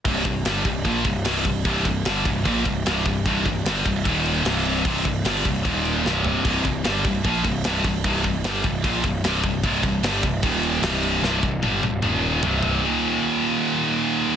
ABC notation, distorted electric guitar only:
X:1
M:4/4
L:1/8
Q:1/4=150
K:Cm
V:1 name="Distorted electric guitar" clef=bass
[C,,G,,C,] [C,,G,,] [G,,D,G,] [C,,G,,] [B,,F,B,] [C,,G,,] [C,,G,,C,] [C,,G,,] | [C,,G,,C,] [C,,G,,] [G,,D,G,] [C,,G,,] [B,,F,B,] [C,,G,,] [C,,G,,C,] [C,,G,,] | [C,,G,,C,] [C,,G,,] [G,,D,G,] [C,,G,,] [E,,B,,E,]2 [C,,G,,C,]2 | [C,,G,,C,] [C,,G,,] [G,,D,G,] [C,,G,,] [E,,B,,E,]2 [C,,G,,C,]2 |
[C,,G,,C,] [C,,G,,] [G,,D,G,] [C,,G,,] [B,,F,B,] [C,,G,,] [C,,G,,C,] [C,,G,,] | [C,,G,,C,] [C,,G,,] [G,,D,G,] [C,,G,,] [B,,F,B,] [C,,G,,] [C,,G,,C,] [C,,G,,] | [C,,G,,C,] [C,,G,,] [G,,D,G,] [C,,G,,] [E,,B,,E,]2 [C,,G,,C,]2 | [C,,G,,C,] [C,,G,,] [G,,D,G,] [C,,G,,] [E,,B,,E,]2 [C,,G,,C,]2 |
[E,,B,,E,]8 |]